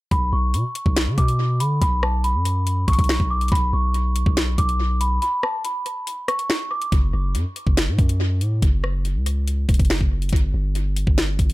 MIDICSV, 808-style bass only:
0, 0, Header, 1, 2, 480
1, 0, Start_track
1, 0, Tempo, 425532
1, 129, Time_signature, 4, 2, 24, 8
1, 13010, End_track
2, 0, Start_track
2, 0, Title_t, "808-style bass"
2, 0, Program_c, 0, 38
2, 128, Note_on_c, 0, 35, 113
2, 359, Note_off_c, 0, 35, 0
2, 368, Note_on_c, 0, 35, 105
2, 608, Note_on_c, 0, 47, 98
2, 625, Note_off_c, 0, 35, 0
2, 722, Note_off_c, 0, 47, 0
2, 968, Note_on_c, 0, 35, 113
2, 1208, Note_on_c, 0, 50, 98
2, 1225, Note_off_c, 0, 35, 0
2, 1322, Note_off_c, 0, 50, 0
2, 1328, Note_on_c, 0, 47, 106
2, 1808, Note_on_c, 0, 50, 102
2, 1825, Note_off_c, 0, 47, 0
2, 2036, Note_off_c, 0, 50, 0
2, 2048, Note_on_c, 0, 35, 104
2, 2648, Note_on_c, 0, 42, 96
2, 2665, Note_off_c, 0, 35, 0
2, 3218, Note_off_c, 0, 42, 0
2, 3248, Note_on_c, 0, 33, 107
2, 3363, Note_off_c, 0, 33, 0
2, 3368, Note_on_c, 0, 35, 102
2, 3599, Note_off_c, 0, 35, 0
2, 3608, Note_on_c, 0, 35, 100
2, 3954, Note_off_c, 0, 35, 0
2, 3969, Note_on_c, 0, 35, 114
2, 4199, Note_off_c, 0, 35, 0
2, 4208, Note_on_c, 0, 35, 104
2, 4784, Note_off_c, 0, 35, 0
2, 4808, Note_on_c, 0, 35, 105
2, 5154, Note_off_c, 0, 35, 0
2, 5168, Note_on_c, 0, 35, 107
2, 5859, Note_off_c, 0, 35, 0
2, 7808, Note_on_c, 0, 30, 108
2, 8039, Note_off_c, 0, 30, 0
2, 8048, Note_on_c, 0, 30, 109
2, 8288, Note_on_c, 0, 42, 104
2, 8305, Note_off_c, 0, 30, 0
2, 8402, Note_off_c, 0, 42, 0
2, 8648, Note_on_c, 0, 30, 109
2, 8888, Note_on_c, 0, 45, 102
2, 8905, Note_off_c, 0, 30, 0
2, 9002, Note_off_c, 0, 45, 0
2, 9007, Note_on_c, 0, 42, 108
2, 9488, Note_on_c, 0, 45, 104
2, 9505, Note_off_c, 0, 42, 0
2, 9716, Note_off_c, 0, 45, 0
2, 9728, Note_on_c, 0, 30, 102
2, 10328, Note_on_c, 0, 37, 97
2, 10345, Note_off_c, 0, 30, 0
2, 10898, Note_off_c, 0, 37, 0
2, 10928, Note_on_c, 0, 28, 107
2, 11043, Note_off_c, 0, 28, 0
2, 11048, Note_on_c, 0, 30, 102
2, 11279, Note_off_c, 0, 30, 0
2, 11287, Note_on_c, 0, 30, 103
2, 11633, Note_off_c, 0, 30, 0
2, 11648, Note_on_c, 0, 31, 109
2, 11879, Note_off_c, 0, 31, 0
2, 11888, Note_on_c, 0, 31, 107
2, 12464, Note_off_c, 0, 31, 0
2, 12488, Note_on_c, 0, 31, 104
2, 12834, Note_off_c, 0, 31, 0
2, 12848, Note_on_c, 0, 31, 107
2, 13010, Note_off_c, 0, 31, 0
2, 13010, End_track
0, 0, End_of_file